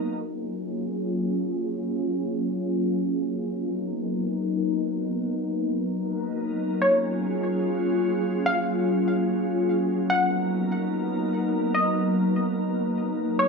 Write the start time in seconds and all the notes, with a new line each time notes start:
Already playing: F#3 A#3 B3 D#4 A#4
0.24 F#3 A#3 C#4 F4 G#4
3.52 B3 D#4 A#4
6.81 F#3 A#3 C#4 F4 G#4 C#5
8.46 F5
10.10 B3 D#4 A#4 F#5
11.74 D#5
13.39 F#3 C#4 F4 G#4 C#5